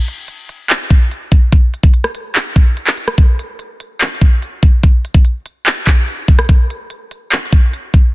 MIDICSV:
0, 0, Header, 1, 2, 480
1, 0, Start_track
1, 0, Tempo, 413793
1, 1768, Time_signature, 4, 2, 24, 8
1, 9449, End_track
2, 0, Start_track
2, 0, Title_t, "Drums"
2, 95, Note_on_c, 9, 42, 84
2, 211, Note_off_c, 9, 42, 0
2, 326, Note_on_c, 9, 42, 80
2, 442, Note_off_c, 9, 42, 0
2, 570, Note_on_c, 9, 42, 83
2, 686, Note_off_c, 9, 42, 0
2, 809, Note_on_c, 9, 42, 65
2, 810, Note_on_c, 9, 39, 118
2, 889, Note_off_c, 9, 42, 0
2, 889, Note_on_c, 9, 42, 62
2, 926, Note_off_c, 9, 39, 0
2, 968, Note_off_c, 9, 42, 0
2, 968, Note_on_c, 9, 42, 61
2, 1049, Note_off_c, 9, 42, 0
2, 1049, Note_on_c, 9, 36, 95
2, 1049, Note_on_c, 9, 42, 78
2, 1165, Note_off_c, 9, 36, 0
2, 1165, Note_off_c, 9, 42, 0
2, 1293, Note_on_c, 9, 42, 77
2, 1409, Note_off_c, 9, 42, 0
2, 1528, Note_on_c, 9, 36, 90
2, 1529, Note_on_c, 9, 42, 83
2, 1644, Note_off_c, 9, 36, 0
2, 1645, Note_off_c, 9, 42, 0
2, 1768, Note_on_c, 9, 42, 85
2, 1769, Note_on_c, 9, 36, 127
2, 1884, Note_off_c, 9, 42, 0
2, 1885, Note_off_c, 9, 36, 0
2, 2015, Note_on_c, 9, 42, 84
2, 2128, Note_on_c, 9, 36, 100
2, 2131, Note_off_c, 9, 42, 0
2, 2244, Note_off_c, 9, 36, 0
2, 2246, Note_on_c, 9, 42, 78
2, 2362, Note_off_c, 9, 42, 0
2, 2369, Note_on_c, 9, 37, 70
2, 2485, Note_off_c, 9, 37, 0
2, 2490, Note_on_c, 9, 42, 81
2, 2606, Note_off_c, 9, 42, 0
2, 2730, Note_on_c, 9, 39, 116
2, 2735, Note_on_c, 9, 42, 83
2, 2846, Note_off_c, 9, 39, 0
2, 2851, Note_off_c, 9, 42, 0
2, 2969, Note_on_c, 9, 36, 98
2, 2969, Note_on_c, 9, 42, 80
2, 3085, Note_off_c, 9, 36, 0
2, 3085, Note_off_c, 9, 42, 0
2, 3213, Note_on_c, 9, 42, 76
2, 3328, Note_on_c, 9, 39, 74
2, 3329, Note_off_c, 9, 42, 0
2, 3444, Note_off_c, 9, 39, 0
2, 3449, Note_on_c, 9, 42, 86
2, 3565, Note_off_c, 9, 42, 0
2, 3569, Note_on_c, 9, 37, 107
2, 3685, Note_off_c, 9, 37, 0
2, 3688, Note_on_c, 9, 42, 82
2, 3689, Note_on_c, 9, 36, 124
2, 3804, Note_off_c, 9, 42, 0
2, 3805, Note_off_c, 9, 36, 0
2, 3935, Note_on_c, 9, 42, 85
2, 4051, Note_off_c, 9, 42, 0
2, 4166, Note_on_c, 9, 42, 81
2, 4282, Note_off_c, 9, 42, 0
2, 4410, Note_on_c, 9, 42, 83
2, 4526, Note_off_c, 9, 42, 0
2, 4648, Note_on_c, 9, 42, 64
2, 4650, Note_on_c, 9, 39, 114
2, 4729, Note_off_c, 9, 42, 0
2, 4729, Note_on_c, 9, 42, 65
2, 4766, Note_off_c, 9, 39, 0
2, 4809, Note_off_c, 9, 42, 0
2, 4809, Note_on_c, 9, 42, 61
2, 4889, Note_off_c, 9, 42, 0
2, 4889, Note_on_c, 9, 36, 97
2, 4889, Note_on_c, 9, 42, 82
2, 5005, Note_off_c, 9, 36, 0
2, 5005, Note_off_c, 9, 42, 0
2, 5132, Note_on_c, 9, 42, 75
2, 5248, Note_off_c, 9, 42, 0
2, 5368, Note_on_c, 9, 36, 90
2, 5369, Note_on_c, 9, 42, 83
2, 5484, Note_off_c, 9, 36, 0
2, 5485, Note_off_c, 9, 42, 0
2, 5608, Note_on_c, 9, 36, 127
2, 5608, Note_on_c, 9, 42, 82
2, 5724, Note_off_c, 9, 36, 0
2, 5724, Note_off_c, 9, 42, 0
2, 5855, Note_on_c, 9, 42, 87
2, 5968, Note_on_c, 9, 36, 99
2, 5971, Note_off_c, 9, 42, 0
2, 6084, Note_off_c, 9, 36, 0
2, 6086, Note_on_c, 9, 42, 82
2, 6202, Note_off_c, 9, 42, 0
2, 6330, Note_on_c, 9, 42, 80
2, 6446, Note_off_c, 9, 42, 0
2, 6569, Note_on_c, 9, 39, 118
2, 6575, Note_on_c, 9, 42, 81
2, 6685, Note_off_c, 9, 39, 0
2, 6691, Note_off_c, 9, 42, 0
2, 6809, Note_on_c, 9, 36, 101
2, 6809, Note_on_c, 9, 39, 95
2, 6810, Note_on_c, 9, 42, 79
2, 6925, Note_off_c, 9, 36, 0
2, 6925, Note_off_c, 9, 39, 0
2, 6926, Note_off_c, 9, 42, 0
2, 7052, Note_on_c, 9, 42, 79
2, 7168, Note_off_c, 9, 42, 0
2, 7288, Note_on_c, 9, 36, 91
2, 7289, Note_on_c, 9, 46, 62
2, 7404, Note_off_c, 9, 36, 0
2, 7405, Note_off_c, 9, 46, 0
2, 7408, Note_on_c, 9, 37, 106
2, 7524, Note_off_c, 9, 37, 0
2, 7528, Note_on_c, 9, 42, 83
2, 7529, Note_on_c, 9, 36, 127
2, 7644, Note_off_c, 9, 42, 0
2, 7645, Note_off_c, 9, 36, 0
2, 7776, Note_on_c, 9, 42, 85
2, 7892, Note_off_c, 9, 42, 0
2, 8006, Note_on_c, 9, 42, 80
2, 8122, Note_off_c, 9, 42, 0
2, 8250, Note_on_c, 9, 42, 79
2, 8366, Note_off_c, 9, 42, 0
2, 8488, Note_on_c, 9, 42, 62
2, 8490, Note_on_c, 9, 39, 114
2, 8569, Note_off_c, 9, 42, 0
2, 8569, Note_on_c, 9, 42, 67
2, 8606, Note_off_c, 9, 39, 0
2, 8648, Note_off_c, 9, 42, 0
2, 8648, Note_on_c, 9, 42, 61
2, 8729, Note_on_c, 9, 36, 101
2, 8730, Note_off_c, 9, 42, 0
2, 8730, Note_on_c, 9, 42, 83
2, 8845, Note_off_c, 9, 36, 0
2, 8846, Note_off_c, 9, 42, 0
2, 8973, Note_on_c, 9, 42, 77
2, 9089, Note_off_c, 9, 42, 0
2, 9208, Note_on_c, 9, 36, 91
2, 9209, Note_on_c, 9, 42, 81
2, 9324, Note_off_c, 9, 36, 0
2, 9325, Note_off_c, 9, 42, 0
2, 9449, End_track
0, 0, End_of_file